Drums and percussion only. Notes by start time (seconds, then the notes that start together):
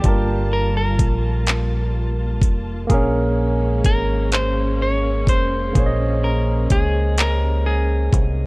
0.04 kick, closed hi-hat
0.99 kick, closed hi-hat
1.46 clap, closed hi-hat
2.41 kick, closed hi-hat
2.90 kick, closed hi-hat
3.85 kick, closed hi-hat
4.32 clap, closed hi-hat
5.27 kick, closed hi-hat
5.75 kick, closed hi-hat
6.70 kick, closed hi-hat
7.18 clap, closed hi-hat
8.13 kick, closed hi-hat